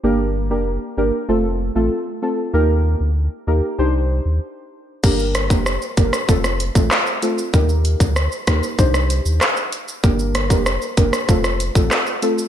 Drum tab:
CC |----------------|----------------|x---------------|----------------|
HH |----------------|----------------|--x---x---x---x-|--x---x---x---x-|
SH |----------------|----------------|xxxxxxxxxxxxxxxx|xxxxxxxxxxxxxxxx|
CP |----------------|----------------|------------x---|------------x---|
SD |----------------|----------------|--r-r--r-r--r---|----r-r--r--r---|
BD |----------------|----------------|o--o--o-o--o----|o--o--o-o-------|

CC |----------------|
HH |--x---x---x---x-|
SH |xxxxxxxxxxxxxxxx|
CP |------------x---|
SD |--r-r--r-r--r---|
BD |o--o--o-o--o----|